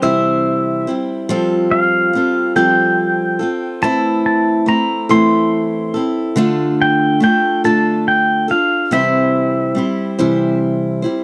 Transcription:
0.02 0.87 C3 medium
0.02 0.87 E3 medium
0.02 0.87 G3 medium
0.02 0.88 C4 medium
0.02 0.87 E4 medium
0.02 0.87 C5 medium
0.02 0.94 E5 medium
0.87 1.28 G3 soft
0.87 1.29 C4 soft
0.87 1.29 E4 soft
0.87 1.29 C5 medium
1.29 2.13 F3 medium
1.29 2.12 G3 medium
1.29 2.15 C4 medium
1.29 2.14 F4 loud
1.29 2.16 A4 loud
1.71 2.56 F5 medium
2.13 2.55 G3 medium
2.13 2.55 C4 medium
2.13 2.55 F4 medium
2.13 2.55 A4 medium
2.56 3.41 F3 medium
2.56 3.41 G3 medium
2.56 3.40 C4 medium
2.56 3.39 F4 medium
2.56 3.39 A4 medium
2.56 3.86 G5 medium
3.39 3.82 C4 soft
3.39 3.83 F4 soft
3.39 3.82 A4 medium
3.82 4.67 E3 medium
3.82 4.66 A3 medium
3.82 4.66 C4 medium
3.82 4.67 E4 medium
3.82 5.09 A4 medium
3.82 4.25 A5 loud
4.26 4.65 A5 loud
4.66 5.09 A3 medium
4.66 5.10 C4 medium
4.66 5.09 E4 medium
4.66 5.11 A#5 loud
5.09 5.95 E3 medium
5.09 5.95 A3 medium
5.09 5.95 C4 medium
5.09 5.94 E4 medium
5.09 5.93 A4 medium
5.09 6.01 C6 medium
5.94 6.37 C4 soft
5.94 6.37 E4 soft
5.94 6.36 A4 medium
6.36 7.21 D3 loud
6.36 7.19 A3 loud
6.36 7.21 D4 loud
6.36 7.22 F4 medium
6.36 7.22 A4 loud
6.82 7.20 G5 loud
7.20 7.63 A3 medium
7.20 7.64 D4 medium
7.20 7.64 F4 medium
7.20 7.63 A4 medium
7.20 7.65 G5 loud
7.64 8.50 D3 medium
7.64 8.50 A3 medium
7.64 8.49 D4 medium
7.64 8.48 F4 medium
7.64 8.47 A4 medium
7.64 8.08 A5 loud
8.08 8.47 G5 medium
8.48 8.92 D4 soft
8.48 8.91 F4 medium
8.48 8.91 A4 medium
8.48 8.94 F5 medium
8.91 9.76 C3 medium
8.91 9.76 E3 medium
8.91 9.73 G3 medium
8.91 9.75 C4 medium
8.91 9.76 E4 medium
8.91 9.77 C5 medium
8.91 10.58 E5 medium
9.75 10.18 G3 medium
9.75 10.18 C4 soft
9.75 10.18 E4 medium
9.75 10.17 C5 medium
10.19 11.05 C3 medium
10.19 11.05 E3 medium
10.19 11.05 G3 medium
10.19 11.04 C4 medium
10.19 11.03 E4 medium
10.19 11.01 C5 medium
11.02 11.24 G3 soft
11.02 11.24 C4 soft
11.02 11.24 E4 medium
11.02 11.24 C5 soft

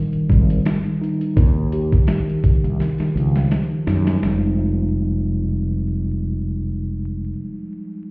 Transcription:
0.00 1.36 D#3 medium
0.00 0.29 G3 medium
0.13 muted fretless electric bass stroke soft
0.13 closed hi-hat soft
0.30 0.58 G#1 loud
0.30 1.37 G3 medium
0.30 kick medium
0.30 closed hi-hat medium
0.50 closed hi-hat medium
0.65 snare loud
0.65 closed hi-hat medium
1.01 1.37 D#4 medium
1.01 closed hi-hat medium
1.21 closed hi-hat medium
1.36 1.94 D#2 loud
1.36 2.07 D#3 medium
1.36 kick loud
1.36 closed hi-hat medium
1.72 4.23 G4 medium
1.72 closed hi-hat medium
1.92 kick medium
1.92 closed hi-hat medium
2.07 2.77 D#3 medium
2.07 snare loud
2.07 closed hi-hat medium
2.30 closed hi-hat soft
2.44 kick medium
2.44 closed hi-hat medium
2.64 2.77 C2 medium
2.64 closed hi-hat medium
2.79 4.22 D#3 medium
2.79 snare medium
2.79 closed hi-hat loud
2.98 muted fretless electric bass stroke soft
2.98 snare soft
2.98 closed hi-hat soft
3.15 3.44 C#2 medium
3.15 4.15 F3 medium
3.15 closed hi-hat medium
3.36 snare medium
3.36 closed hi-hat medium
3.51 snare medium
3.51 closed hi-hat medium
3.87 4.16 F#2 medium
3.87 4.22 D#4 medium
3.87 snare medium
3.87 closed hi-hat medium
4.07 snare medium
4.07 closed hi-hat medium
4.16 7.27 F3 medium
4.20 7.33 F1 medium
4.20 7.31 G3 medium
4.20 snare loud
4.24 7.35 G#3 medium
4.24 7.39 D#4 medium

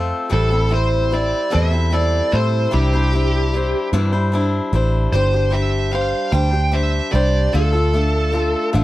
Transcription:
0.00 0.11 F2 loud
0.00 0.30 A3 medium
0.00 0.29 C4 medium
0.00 0.30 F4 medium
0.00 0.31 A4 medium
0.29 1.32 A1 medium
0.29 0.51 A2 medium
0.29 0.51 E3 medium
0.29 0.51 G3 medium
0.29 0.51 C4 medium
0.29 0.50 E4 medium
0.29 0.49 A4 medium
0.29 0.73 A4 loud
0.50 0.68 G3 soft
0.50 0.69 C4 soft
0.50 0.70 E4 medium
0.50 0.71 A4 medium
0.69 1.10 G3 medium
0.69 1.11 C4 medium
0.69 1.11 E4 medium
0.69 1.12 A4 medium
0.74 1.14 C5 medium
1.11 1.50 G3 medium
1.11 1.51 C4 medium
1.11 1.51 E4 medium
1.11 1.51 A4 medium
1.11 1.53 D5 medium
1.50 1.71 A2 medium
1.50 1.72 E3 medium
1.50 1.72 G3 medium
1.50 1.72 C4 medium
1.50 1.71 E4 medium
1.50 1.69 A4 medium
1.50 1.93 E5 loud
1.55 2.20 E2 medium
1.71 1.89 G3 soft
1.71 1.91 C4 soft
1.71 1.92 E4 soft
1.71 1.91 A4 medium
1.91 2.30 G3 medium
1.91 2.31 C4 medium
1.91 2.32 E4 medium
1.91 2.33 A4 medium
1.91 2.34 D5 loud
2.31 2.66 A2 medium
2.31 2.71 G3 medium
2.31 2.72 C4 medium
2.31 2.72 E4 medium
2.31 2.73 A4 medium
2.31 2.74 C5 medium
2.71 3.73 C2 medium
2.71 2.92 C3 medium
2.71 2.92 E3 medium
2.71 2.92 G3 medium
2.71 2.92 D4 medium
2.71 2.92 E4 medium
2.71 3.89 G4 medium
2.71 2.92 C5 medium
2.93 3.11 G3 soft
2.93 3.12 D4 medium
2.93 3.13 E4 medium
2.93 3.13 C5 medium
3.12 3.52 G3 medium
3.12 3.53 D4 medium
3.12 3.54 E4 medium
3.12 3.54 C5 medium
3.53 3.92 G3 medium
3.53 3.92 D4 medium
3.53 3.93 E4 medium
3.53 3.94 C5 medium
3.93 4.59 G2 medium
3.93 4.13 C3 medium
3.93 4.13 E3 medium
3.93 4.13 G3 medium
3.93 4.13 D4 medium
3.93 4.12 E4 loud
3.93 4.11 C5 medium
4.12 4.31 G3 soft
4.12 4.32 D4 medium
4.12 4.33 E4 medium
4.12 4.33 C5 medium
4.32 4.72 G3 medium
4.32 4.72 D4 medium
4.32 4.73 E4 medium
4.32 4.74 C5 medium
4.73 5.06 A1 medium
4.73 5.12 G3 medium
4.73 5.12 D4 medium
4.73 5.14 E4 medium
4.73 5.14 C5 medium
5.12 6.13 G1 medium
5.12 5.33 G3 medium
5.12 5.33 D4 medium
5.12 5.33 G4 medium
5.12 5.54 C5 medium
5.12 5.32 C5 medium
5.33 5.51 D4 soft
5.33 5.52 G4 medium
5.33 5.53 C5 medium
5.51 5.89 G3 medium
5.51 5.91 D4 medium
5.51 5.92 G4 medium
5.51 5.93 C5 medium
5.51 5.92 E5 medium
5.91 6.31 G3 medium
5.91 6.31 D4 medium
5.91 6.32 G4 medium
5.91 6.33 C5 medium
5.91 6.30 F5 medium
6.32 7.00 D2 medium
6.32 6.53 G3 medium
6.32 6.53 D4 medium
6.32 6.52 G4 medium
6.32 6.50 C5 medium
6.32 6.74 G5 loud
6.51 6.71 D4 soft
6.51 6.72 G4 soft
6.51 6.72 C5 medium
6.72 7.10 G3 medium
6.72 7.11 D4 medium
6.72 7.13 G4 medium
6.72 7.14 C5 medium
6.72 7.12 E5 medium
7.11 7.47 C2 loud
7.11 7.53 G3 medium
7.11 7.53 D4 medium
7.11 7.54 G4 medium
7.11 7.54 C5 medium
7.11 7.54 D5 medium
7.53 8.54 D2 medium
7.53 7.73 D3 medium
7.53 7.74 A3 medium
7.53 7.74 D4 medium
7.53 7.73 F4 medium
7.53 8.70 A4 medium
7.53 7.71 A4 medium
7.73 7.93 D4 soft
7.73 7.94 F4 soft
7.73 7.93 A4 medium
7.93 8.31 A3 medium
7.93 8.32 D4 medium
7.93 8.33 F4 medium
7.93 8.34 A4 medium
8.32 8.72 A3 medium
8.32 8.73 D4 medium
8.32 8.74 F4 medium
8.32 8.74 A4 medium
8.73 8.84 A1 medium
8.73 8.84 D3 medium
8.73 8.84 A3 medium
8.73 8.84 D4 medium
8.73 8.84 F4 medium
8.73 8.84 A4 medium

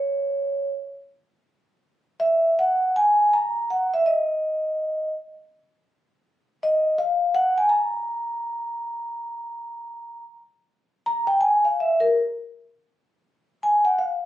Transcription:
0.00 0.67 C#5 medium
2.20 2.53 E5 medium
2.59 2.94 F#5 medium
2.96 3.31 G#5 medium
3.33 3.69 A#5 loud
3.70 3.90 F#5 medium
3.94 4.04 E5 medium
4.06 5.10 D#5 medium
6.63 6.96 D#5 medium
6.98 7.35 F5 medium
7.35 7.58 F#5 medium
7.58 7.69 G#5 medium
7.69 10.23 A#5 medium
11.06 11.27 A#5 medium
11.27 11.39 G5 medium
11.41 11.63 G#5 medium
11.65 11.76 F5 medium
11.80 12.01 E5 medium
12.00 12.08 A#4 medium
13.63 13.84 G#5 medium
13.85 13.96 F#5 medium
13.99 14.12 F5 medium

